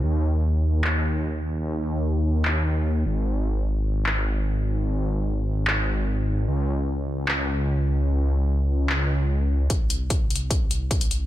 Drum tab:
HH |--------------------------------|--------------------------------|--------------------------------|--------------------------------|
CP |----------------x---------------|----------------x---------------|----------------x---------------|----------------x---------------|
BD |--------------------------------|--------------------------------|--------------------------------|--------------------------------|

HH |--------------------------------|--------------------------------|x---x---x---xx--x---x---x-x-x---|
CP |----------------x---------------|----------------x---------------|--------------------------------|
BD |--------------------------------|--------------------------------|o-------o-------o-------o-------|